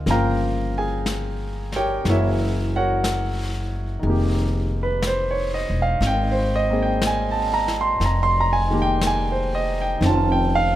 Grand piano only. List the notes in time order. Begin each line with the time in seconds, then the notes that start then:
0.06 C#3 F3 A#3
0.11 F4 A#4 F5 G5 A#5
0.78 G#4 G#5
1.76 G4 A#4 C#5 G5
2.04 E3 G#3 A#3
2.09 E4 F#4 A#4 C#5 E5
2.76 F#4 A#4 C#5 F#5
3.99 D#3 G#3
4.07 A#3 G4
4.83 B4
5.07 C5
5.31 C#5
5.54 D#5
5.82 F5
6.07 G5
6.32 C5
6.56 D#5
6.70 A#3 C4 G#4
6.82 G5
7.07 G#5
7.31 A5
7.54 A#5
7.81 C6
8.06 A#5
8.23 C6
8.40 A#5
8.53 G#5
8.68 D#3 G#3 A#3
8.73 G4
8.82 G5
9.07 G#5
9.32 C5
9.55 D#5
9.82 G5
9.98 D#3 C4
10.06 C#4 F4 A5
10.32 G5
10.55 F5